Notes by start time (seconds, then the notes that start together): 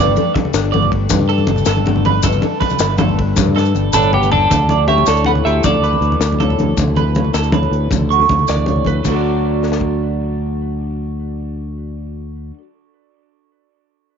Already playing: G1
0.00 G2 G3 A3 D4 A4 D5
0.07 low conga
0.16 A4, ride, high conga, low conga, maracas
0.34 G3, muted clean electric guitar stroke, kick, snare, ride, muted conga, low conga
0.45 high conga, low conga
0.54 G1 D4, snare, ride, maracas
0.72 D3 A3 D5, ride, high conga
0.82 low conga
0.92 D4, kick, ride
1.10 G2, kick, ride, muted conga, high conga, maracas
1.19 low conga
1.29 A4, ride
1.38 high conga
1.47 G1 G3, ride, muted conga
1.56 low conga, maracas
1.65 G1 D4 A4, snare, ride, maracas
1.77 high conga
1.85 D3 A3, ride, muted conga
1.96 low conga
2.05 D4 B4, ride, high conga
2.23 G1 G2 A4, kick, ride, muted conga, low conga, maracas
2.33 low conga
2.42 A4, ride, high conga
2.60 G3 B4, kick, snare, ride, muted conga, low conga
2.70 high conga, low conga, maracas
2.79 G1 D4, snare, ride, low conga, maracas
2.98 D3 A3 A4, ride, muted conga, high conga, low conga, maracas
3.09 low conga
3.19 D4, kick, ride
3.36 G2, kick, snare, muted conga, high conga, maracas
3.46 low conga
3.55 A4, snare, high conga
3.60 A4
3.65 maracas
3.75 G1 G3, high conga, maracas
3.93 G1 A2 D4 A4 B4, mid tom, high conga, maracas
4.02 maracas
4.13 B2 B3 G4, mid tom, low conga
4.23 maracas
4.31 C#3 D4 A4, floor tom, low conga
4.50 D2 D3 E4 A4, kick, closed hi-hat, muted conga, maracas
4.59 low conga
4.69 D5, closed hi-hat, high conga
4.73 E4
4.88 G4 C#5 E5, closed hi-hat, muted conga, low conga
4.92 A3
4.98 high conga, low conga
5.06 D2 A4 D5, snare, closed hi-hat, low conga, maracas
5.15 low conga, maracas
5.24 A2 A4 B4 F#5, closed hi-hat, high conga
5.35 low conga
5.45 D2 G4 A4 E5, snare, closed hi-hat
5.63 D2 D3 E4 A4 D5, kick, closed hi-hat, muted conga, high conga, maracas
5.75 low conga
5.83 A4 B4, closed hi-hat
5.93 high conga
6.01 D2 A3, closed hi-hat, low conga
6.12 low conga
6.20 D2 A4, snare, closed hi-hat, maracas
6.32 high conga
6.40 A2 A4, closed hi-hat, muted conga, low conga
6.50 low conga
6.58 D2 A4, closed hi-hat, high conga
6.77 D2 D3 E4, kick, closed hi-hat, muted conga, maracas
6.87 low conga
6.96 A4 B4, closed hi-hat, high conga
7.15 A3, closed hi-hat, muted conga, low conga
7.24 high conga, low conga
7.34 D2 A4, snare, closed hi-hat, low conga, maracas
7.43 low conga, maracas
7.52 A2 B4, closed hi-hat, muted conga, high conga
7.63 low conga
7.71 D2 A4, closed hi-hat
7.91 D2 D3 E4, kick, closed hi-hat, muted conga, high conga, maracas
8.00 low conga
8.11 F#4 C#6, closed hi-hat
8.20 A4, high conga
8.29 D2 A3, kick, closed hi-hat, muted conga, low conga
8.39 low conga
8.48 D2 A4 D5, snare, closed hi-hat, maracas
8.56 high conga
8.66 A2, closed hi-hat, muted conga, low conga
8.76 low conga
8.85 D2 A4 B4, kick, closed hi-hat, high conga
9.04 D2 D3 F#3 D4 F#4, kick, crash, muted conga, maracas
9.09 A3 D4 A4
9.14 F#4 D5
9.63 snare
9.72 snare
9.81 kick